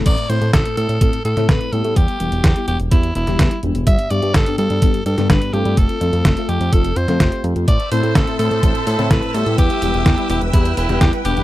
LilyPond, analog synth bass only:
\new Staff \with { instrumentName = "Analog synth bass" } { \clef bass \time 4/4 \key a \minor \tempo 4 = 126 a,,16 r16 a,16 a,16 a,,16 r16 a,16 a,16 a,,16 r16 a,16 a,16 a,,16 r16 a,16 a,16 | e,16 r16 e,,16 e,,16 e,16 r16 e,,16 e,,16 e,8 e,,16 e,,16 e,16 r16 e,,16 e,,16 | g,,16 r16 g,16 g,16 g,,16 r16 g,16 g,16 g,,16 r16 g,16 g,16 g,,16 r16 g,16 g,16 | f,,16 r16 f,16 f,16 f,,16 r16 f,16 f,16 f,,8 f,16 f,16 f,,16 r16 f,16 f,16 |
a,,16 r16 a,16 a,16 a,,16 r16 a,16 a,16 a,,16 r16 a,16 a,16 a,,16 r16 a,16 a,16 | e,16 r16 e,,16 e,,16 e,16 r16 e,,16 e,,16 e,8 e,,16 e,,16 e,16 r16 e,,16 e,,16 | }